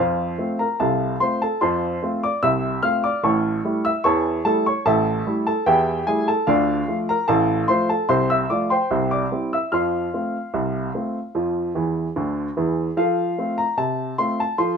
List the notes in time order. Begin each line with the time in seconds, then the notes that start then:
Already playing: F5
0.00 F2 F3 F4 C5
0.38 A3 C4 F4
0.59 A#4 A#5
0.80 C2 C3 A4 F5 A5
1.20 A3 C4 F4 C5 C6
1.42 A4 A5
1.61 F2 F3 C5 A5 C6
2.03 A3 C4 F4
2.23 D5 D6
2.43 C2 C3 E5 E6
2.83 A3 C4 F4 F5 F6
3.04 D5 D6
3.23 A1 A2 C#5 A5 C#6
3.64 G3 A3 E4
3.85 E5 E6
4.04 E2 E3 C#5 A5 C#6
4.45 G3 A3 E4 A4 A5
4.66 C#5 C#6
4.86 A1 A2 A4 E5 A5
5.27 G3 A3 E4
5.47 A4 A5
5.66 E2 E3 G4 E5 G5
6.07 G3 A3 E4 G#4 G#5
6.28 A4 A5
6.47 D2 D3 F4 D5 F5
6.88 F3 A3 F4
7.09 A#4 A#5
7.28 A1 A2 A4 F5 A5
7.68 F3 A3 F4 C5 C6
7.89 A4 A5
8.09 C2 C3 C5 C6
8.30 E5 E6
8.50 F3 A3 F4 D5 D6
8.70 C5 G5 C6
8.91 C2 C3
9.11 D5 D6
9.32 G3 C4 E4
9.53 E5 E6
9.72 F2 F3 F5 C6 F6
10.14 A3 C4 F4
10.54 C2 C3
10.94 A3 C4 F4
11.35 F2 F3
11.75 E2 E3
12.16 D2 D3
12.57 E2 E3
12.97 F3 A4 F5
13.38 A3 C4 F4
13.58 A#5
13.77 C3 A5
14.18 A3 C4 F4 C6
14.40 A5
14.58 F3 A4 C6